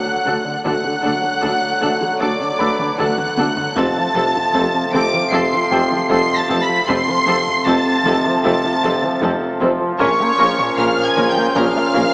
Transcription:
Already playing: sub bass D1, trombone section D3 F#3, french horn section A3 A4, violin section F#5 F#6, grand piano E6
0.06 analog synth bass D2
0.25 cello section D2, tuba D2, double bass section D2, analog synth bass D3, viola section D4 A4, grand piano F#6
0.45 analog synth bass D3
0.65 sub bass D1, analog synth bass D2, cello section D2, double bass section D2, tuba D2, trombone section D3 F#3, french horn section A3 A4, viola section D4 A4, violin section F#5 F#6, taiko
0.84 analog synth bass D3
1.02 cello section D2, tuba D2, double bass section D2, analog synth bass D3, viola section D4 A4
1.22 analog synth bass D2
1.42 analog synth bass D2, double bass section D2, cello section D2, tuba D2, viola section D4 A4, taiko
1.62 analog synth bass D2
1.81 analog synth bass D2, cello section D2, double bass section D2, tuba D2, viola section D4 A4, taiko mid
2.00 analog synth bass D3, taiko mid
2.20 analog synth bass D2, cello section D2, double bass section D2, tuba D2, viola section D4 A4, violin section D5 D6, taiko
2.39 analog synth bass D3
2.59 analog synth bass D2, double bass section D2, tuba D2, cello section D2, viola section D4 A4, grand piano B4 B5
2.79 analog synth bass D3, taiko mid
2.98 analog synth bass D2, double bass section D2, cello section D2, tuba D2, viola section D4 A4, violin section F#5 F#6, taiko mid
3.18 analog synth bass D2, taiko mid
3.37 cello section D2, double bass section D2, tuba D2, analog synth bass D3, viola section D4 A4, taiko high
3.57 analog synth bass D3, taiko low
3.76 double bass section F1, sub bass F1, tuba F1, analog synth bass F2, cello section F2, trombone section C3 F3, viola section C4 A4, french horn section C4 A4, violin section A5 A6, taiko
3.96 analog synth bass F3
4.15 tuba F1, double bass section F1, cello section F2, analog synth bass F3, viola section C4 A4
4.35 analog synth bass F2
4.54 double bass section F1, tuba F1, cello section F2, analog synth bass F2, viola section C4 A4, taiko
4.74 analog synth bass F2
4.93 tuba F1, double bass section F1, cello section F2, analog synth bass F2, viola section C4 A4, violin section D6 D7, taiko mid
5.12 analog synth bass F3, taiko mid
5.32 tuba F1, double bass section F1, cello section F2, analog synth bass F2, viola section C4 A4, violin section C6 C7, taiko
5.52 analog synth bass F3
5.71 tuba F1, double bass section F1, cello section F2, analog synth bass F2, viola section C4 A4, grand piano G4 G5
5.90 analog synth bass F3, taiko mid
6.10 tuba F1, double bass section F1, cello section F2, analog synth bass F2, viola section C4 A4, violin section C6 C7, taiko
6.30 analog synth bass F2
6.36 violin section A5 A6
6.49 tuba F1, double bass section F1, cello section F2, analog synth bass F3, viola section C4 A4
6.63 violin section B5 B6
6.69 analog synth bass F3
6.87 tuba F1, double bass section F1, sub bass F1, cello section F2, analog synth bass F2, trombone section C3 F3, viola section C4 A4, french horn section C4 A4, violin section C6 C7, taiko
7.07 analog synth bass F3
7.27 tuba F1, double bass section F1, cello section F2, analog synth bass F3, viola section C4 A4
7.47 analog synth bass F2
7.66 double bass section F1, tuba F1, analog synth bass F2, cello section F2, viola section C4 A4, violin section A5 A6, taiko
7.86 analog synth bass F2
8.05 tuba F1, double bass section F1, cello section F2, analog synth bass F2, viola section C4 A4, taiko mid
8.25 analog synth bass F3, taiko mid
8.44 tuba F1, double bass section F1, analog synth bass F2, cello section F2, viola section C4 A4, violin section A5 A6, taiko
8.63 analog synth bass F3
8.83 tuba F1, double bass section F1, analog synth bass F2, cello section F2, viola section C4 A4
9.02 analog synth bass F3, taiko mid
9.21 tuba F1, double bass section F1, analog synth bass F2, cello section F2, viola section C4 A4, taiko
9.41 analog synth bass F2
9.61 double bass section F1, tuba F1, cello section F2, analog synth bass F3, viola section C4 A4
9.80 analog synth bass F3
9.99 tuba A#1, double bass section A#1, sub bass A#1, analog synth bass A#2, trombone section A#2, cello section A#2, viola section C#4 A#4, french horn section C#4 A#4, violin section C#5 C#6, taiko
10.20 analog synth bass A#3
10.38 tuba A#1, double bass section A#1, cello section A#2, analog synth bass A#3, viola section C#4 A#4
10.59 analog synth bass A#2
10.77 tuba A#1, double bass section A#1, cello section A#2, analog synth bass A#2, viola section C#4 A#4, violin section F5 F6, taiko
10.97 analog synth bass A#2
11.03 violin section G#5 G#6
11.16 tuba A#1, double bass section A#1, analog synth bass A#2, cello section A#2, viola section C#4 A#4, taiko mid
11.30 violin section G5 G6
11.36 analog synth bass A#3, taiko mid
11.55 tuba A#1, double bass section A#1, analog synth bass A#2, cello section A#2, viola section C#4 A#4, violin section F5 F6, taiko
11.75 analog synth bass A#3
11.94 tuba A#1, double bass section A#1, analog synth bass A#2, cello section A#2, viola section C#4 A#4

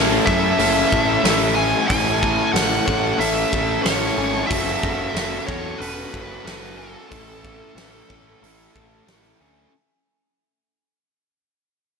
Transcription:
Already playing: picked electric bass A1, overdriven electric guitar A3 C#4 E4 A4
0.25 picked electric bass F#2, overdriven electric guitar C#4 E4 A4, clean electric guitar C#5, lead electric guitar E5, kick
0.58 picked electric bass F#1, overdriven electric guitar A3 C#4 E4 A4, open hi-hat
0.90 picked electric bass A1, overdriven electric guitar C#4 E4 A4, kick
1.23 picked electric bass A1, overdriven electric guitar A3 C#4 E4 A4, snare, open hi-hat
1.54 overdriven electric guitar C#4 E4 A4, lead electric guitar G#5, clean electric guitar G#5
1.87 picked electric bass A1, overdriven electric guitar A3 C#4 E4 A4, lead electric guitar G#5, kick, open hi-hat
2.19 overdriven electric guitar C#4 E4 A4
2.23 kick
2.52 picked electric bass A1, overdriven electric guitar A3 C#4 E4, lead electric guitar F#5, open hi-hat
2.56 overdriven electric guitar A4, snare
2.85 picked electric bass A1, overdriven electric guitar C#4 E4 A4, clean electric guitar C#5, kick
3.17 picked electric bass A1, overdriven electric guitar A3 C#4 E4 A4, lead electric guitar E5, open hi-hat
3.51 picked electric bass A1, overdriven electric guitar C#4 E4 A4, kick
3.82 picked electric bass A1, overdriven electric guitar A3 C#4 E4, lead electric guitar C#5, snare, open hi-hat
3.87 overdriven electric guitar A4
4.15 picked electric bass G#1, overdriven electric guitar C#4 E4 A4, clean electric guitar G#5
4.47 picked electric bass F#1, overdriven electric guitar F#3 C#4 F#4, lead electric guitar E5, kick
4.51 overdriven electric guitar A4, open hi-hat
4.80 picked electric bass F#1, overdriven electric guitar C#4 F#4 A4, kick
5.13 picked electric bass F#1, overdriven electric guitar F#3 C#4 F#4 A4, snare, open hi-hat
5.47 picked electric bass E2, overdriven electric guitar C#4 F#4 A4, lead electric guitar C#5, clean electric guitar C#5, kick
5.78 picked electric bass E1, overdriven electric guitar F#3 C#4 F#4, lead electric guitar B4, open hi-hat
5.83 overdriven electric guitar A4
6.12 picked electric bass F#1, overdriven electric guitar C#4 F#4 A4, kick
6.44 picked electric bass F#1, overdriven electric guitar F#3 C#4 F#4 A4, snare, open hi-hat
6.77 overdriven electric guitar C#4 F#4 A4, lead electric guitar A4, clean electric guitar G#5
7.10 picked electric bass A1, overdriven electric guitar A3 C#4 E4 A4, kick, open hi-hat
7.42 overdriven electric guitar C#4 E4 A4, kick
7.74 picked electric bass A1, overdriven electric guitar A3 C#4 E4 A4, clean electric guitar B4, snare, open hi-hat
8.08 picked electric bass A1, overdriven electric guitar C#4 E4 A4, clean electric guitar C#5, kick
8.41 picked electric bass A1, overdriven electric guitar A3 C#4 E4 A4, open hi-hat
8.73 picked electric bass A1, overdriven electric guitar C#4 E4 A4, kick
9.05 picked electric bass A1, overdriven electric guitar A3 C#4 E4 A4, snare, open hi-hat
9.39 picked electric bass D2, overdriven electric guitar C#4 E4 A4, clean electric guitar G#5

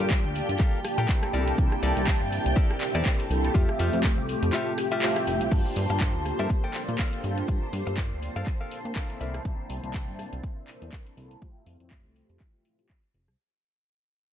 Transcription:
Already playing: string machine G4 G5
0.00 analog synth bass G2, analog polysynth A#3 D4 F4 G4 A5, closed hi-hat
0.10 kick, clap, closed hi-hat
0.24 analog synth bass D2, muted clean electric guitar stroke
0.35 open hi-hat
0.49 analog synth bass G2, closed hi-hat
0.59 clean electric guitar G4 A4 A#4 F5, kick, clap, closed hi-hat
0.85 cross-stick, open hi-hat
0.98 analog synth bass A#2, clean electric guitar G4 A4 A#4 G5, closed hi-hat
1.09 analog polysynth A#3 C4 D4 E4 A4, kick, clap
1.23 cross-stick, closed hi-hat
1.33 analog synth bass C2, clean electric guitar E4 A4 A#4 D5, open hi-hat
1.47 closed hi-hat
1.58 analog synth bass C2, analog polysynth A#3 C4 D4 E4 A5, kick, closed hi-hat
1.72 cross-stick
1.83 analog synth bass C2, clean electric guitar E4 A4 A#4 D5, open hi-hat
1.96 analog synth bass C2, analog polysynth A#3 C4 D4 E4 A5, closed hi-hat
2.07 kick, clap, closed hi-hat
2.21 analog synth bass G2, muted clean electric guitar stroke
2.32 open hi-hat
2.46 analog synth bass C2, closed hi-hat
2.56 clean electric guitar E4 A4 A#4 D5, kick, closed hi-hat
2.71 cross-stick
2.81 clap, open hi-hat
2.95 analog synth bass E2, clean electric guitar E4 A4 A#4 D5, cross-stick, closed hi-hat
3.06 kick, clap
3.20 closed hi-hat
3.30 analog synth bass C2, analog polysynth A#3 C4 D4 E4 A4, open hi-hat
3.44 closed hi-hat
3.54 analog synth bass F2, analog polysynth A3 G4, clean electric guitar F4 G4 A4 E5, kick, closed hi-hat
3.69 cross-stick
3.79 analog synth bass F2, clean electric guitar F4 G4 A4 E5, open hi-hat
3.92 analog synth bass F2, analog polysynth A3 C4 F4 G4, closed hi-hat
4.04 kick, clap, closed hi-hat
4.18 analog synth bass C2, muted clean electric guitar stroke
4.29 open hi-hat
4.43 analog synth bass F2, closed hi-hat
4.53 clean electric guitar F4 G4 A4 E5, clap, closed hi-hat
4.78 cross-stick, open hi-hat
4.92 clean electric guitar F4 G4 A4 E5, closed hi-hat
5.02 analog polysynth A3 C4 F4 G4 E5, clap
5.16 cross-stick, closed hi-hat
5.27 analog synth bass F1, open hi-hat
5.41 analog synth bass C2, closed hi-hat
5.51 analog synth bass G2, analog polysynth A#3 D4 F4 G4 A5, string machine C5 C6, muted clean electric guitar stroke, kick, closed hi-hat, crash
5.65 muted clean electric guitar stroke
5.76 analog synth bass G2, open hi-hat
5.89 analog synth bass G2, analog polysynth A#3 D4 F4 G4 A5, muted clean electric guitar stroke, closed hi-hat
6.00 muted clean electric guitar stroke, kick, clap, closed hi-hat
6.15 analog synth bass D2
6.25 cross-stick, open hi-hat
6.39 analog synth bass G2, clean electric guitar A4 A#4 E5, closed hi-hat
6.50 kick, closed hi-hat
6.64 clean electric guitar A4 A#4 G5
6.74 clap, open hi-hat
6.89 analog synth bass A#2, closed hi-hat
6.99 clean electric guitar A4 A#4 F5, kick, clap
7.13 closed hi-hat
7.24 analog synth bass G2, analog polysynth A#3 D4 F4 G4 A4, open hi-hat
7.38 closed hi-hat
7.48 analog synth bass G2, muted clean electric guitar stroke, kick, closed hi-hat
7.62 muted clean electric guitar stroke
7.73 analog synth bass G2, open hi-hat
7.86 analog synth bass G2, analog polysynth A#3 D4 F4 G4 A5, muted clean electric guitar stroke, closed hi-hat
7.97 muted clean electric guitar stroke, kick, clap, closed hi-hat
8.12 analog synth bass D2
8.22 open hi-hat
8.36 analog synth bass G2, clean electric guitar A4 A#4 F5, closed hi-hat
8.47 kick, clap, closed hi-hat
8.61 clean electric guitar A4 A#4 F5
8.71 open hi-hat
8.85 analog synth bass A#2, closed hi-hat
8.96 analog polysynth A#3 C4 D4 E4 A4, clean electric guitar A4 A#4 F5, kick, clap
9.10 closed hi-hat
9.21 analog synth bass C2, clean electric guitar A4 A#4 D5 E5, open hi-hat
9.34 cross-stick, closed hi-hat
9.45 analog synth bass C2, analog polysynth A#3 C4 D4 E4 A5, kick, closed hi-hat
9.70 analog synth bass C2, open hi-hat
9.83 analog synth bass C2, analog polysynth A#3 C4 D4 E4 A5, closed hi-hat
9.94 kick, clap, closed hi-hat
10.08 analog synth bass G2
10.19 cross-stick, open hi-hat
10.33 analog synth bass C2, closed hi-hat
10.44 kick, closed hi-hat
10.68 clap, open hi-hat
10.82 analog synth bass E2, closed hi-hat
10.92 kick, clap
11.07 closed hi-hat
11.17 analog synth bass C2, analog polysynth A#3 C4 D4 E4 A4, open hi-hat
11.31 closed hi-hat
11.42 analog synth bass F2, analog polysynth A3 C4 E4 F4, kick, closed hi-hat
11.66 analog synth bass F2, open hi-hat
11.80 analog synth bass F2, analog polysynth A3 C4 E4 F4 G4, closed hi-hat
11.91 kick, clap, closed hi-hat
12.05 analog synth bass C2
12.16 open hi-hat
12.30 analog synth bass F2, closed hi-hat
12.40 kick, clap, closed hi-hat
12.65 open hi-hat
12.79 closed hi-hat
12.89 kick, clap
13.04 closed hi-hat
13.14 analog synth bass F1, open hi-hat
13.28 analog synth bass C2, cross-stick, closed hi-hat

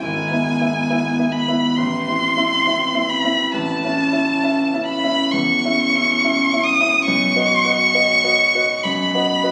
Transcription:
0.03 grand piano G#1, violin G#5
0.31 grand piano B3 E4 E5
0.61 grand piano B3 E4 E5
0.90 grand piano B3 E4 E5
1.19 grand piano B3 E4 E5
1.32 violin B5
1.48 grand piano B3 E4 E5
1.76 grand piano A1, violin C6
2.08 grand piano C4 E4 E5
2.37 grand piano C4 E4 E5
2.67 grand piano C4 E4 E5
2.94 grand piano C4 E4 E5
3.09 violin B5
3.24 grand piano C4 E4 E5
3.52 grand piano A1, violin A5
3.84 grand piano C#4 E4 E5
4.12 grand piano C#4 E4 E5
4.43 grand piano C#4 E4 E5
4.73 grand piano C#4 E4 E5
4.86 violin B5
5.03 grand piano C#4 E4 E5
5.32 grand piano E2, violin C#6
5.64 grand piano C#4 E4 E5
5.94 grand piano C#4 E4 E5
6.23 grand piano C#4 E4 E5
6.53 grand piano C#4 E4 E5
6.63 violin D#6
6.80 grand piano C#4 E4 E5
7.05 grand piano B1, violin C#6
7.36 grand piano F#4 B4 D#5
7.64 grand piano F#4 B4 D#5
7.94 grand piano F#4 B4 D#5
8.24 grand piano F#4 B4 D#5
8.55 grand piano F#4 B4 D#5
8.83 grand piano F#2, violin B5
9.14 grand piano F#4 B4 D#5
9.43 grand piano F#4 B4 D#5

